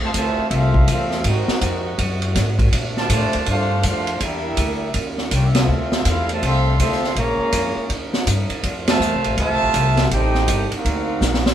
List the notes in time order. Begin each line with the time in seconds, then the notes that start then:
Already playing: C3 A3 C4 F4
0.01 C3 E3 A3 C5 E5, muted upright bass stroke
0.05 F4 A5
0.14 D2 C3 E3 A3 F4 C5 E5 A5, kick, hi-hat pedal, ride
0.38 muted upright bass stroke
0.49 C2 A3 C4 F4 E5, kick, ride
0.55 C4 A4 E5 F5
0.74 kick
0.88 E2 A3 C4 F4 A4 E5, hi-hat pedal, ride
0.92 C4 F5
1.11 snare
1.24 G#2 A#2 G#3 C4 D#4 F#4, kick, ride
1.28 C4 F#4 A#4 D#5
1.48 muted upright bass stroke, snare
1.61 F2, kick, hi-hat pedal, ride
1.98 F#2, kick, ride
2.22 ride
2.35 G#2, kick, snare, hi-hat pedal, ride
2.59 kick, ride
2.72 A#2 C3 A3 D4, kick, ride
2.96 D3 F3 A3 F4 C5 D5 A5, snare
3.09 A2 D3 F3 A3 F4 C5 D5 A5, kick, hi-hat pedal, ride
3.22 F2
3.33 D2, ride
3.46 G2 A3 D4 F4 A4 C5 F5, kick, ride
3.83 F2 A3 D4 F4, kick, hi-hat pedal, ride
3.88 A4 C5 F5
4.07 ride
4.19 E2 D3 G3 A#3 E4, kick, ride
4.24 D4 G4 A#4 E5
4.57 D2, kick, hi-hat pedal, ride
4.94 D#2 C#4 D#4 F4, kick, ride
5.18 snare
5.31 C2 A#3 C#4 F4 G4 A#4 C#5 G5, kick, hi-hat pedal, ride
5.46 E5
5.55 A3 C4 F4 A4 E5 F5, snare, ride
5.67 D2 C3 G3 D4
5.92 snare
6.05 E2 A3 C4 E4 F4 A4 F5, kick, hi-hat pedal, ride
6.28 C3 F3 A3, ride
6.33 F4 C5 E5 A5
6.41 C2 F3 A3 C4, kick, ride
6.45 A4 E5 F5 C6
6.77 D2 F3 A3 C4 A4 E5 F5 C6, kick, hi-hat pedal, ride
6.92 snare
7.04 snare
7.15 A#1 C#3 F3 G#3 A#3 F4 G#4 C#5 F5 A#5, kick, ride
7.38 muted upright bass stroke
7.52 F2, kick, hi-hat pedal, ride
7.75 muted upright bass stroke
7.89 D#2 F3 G3 D#4, kick, ride
8.13 snare
8.26 G2, kick, hi-hat pedal, ride
8.49 muted upright bass stroke, ride
8.62 F2 C3 F3 A3 F4, kick, ride
8.86 C3 F3 A3 F4 C5 E5 A5, snare, ride
8.99 E2, hi-hat pedal
9.13 C2
9.24 A1, ride
9.37 D2 C3 F3 A3 F4 C5 E5 A5, kick, ride
9.50 C2
9.61 A1
9.74 C2, kick, hi-hat pedal, ride
9.97 snare, ride
10.11 A1 G3 C4 D#4 G4 A4 C5 G5, kick, ride
10.34 snare
10.48 G1, kick, hi-hat pedal, ride
10.72 A#3 C4 D#4 F#4 A#4 F5, muted upright bass stroke, ride
10.84 D2 D3 F#3 A#3, kick, ride
11.21 A#1, snare, hi-hat pedal
11.34 snare
11.46 snare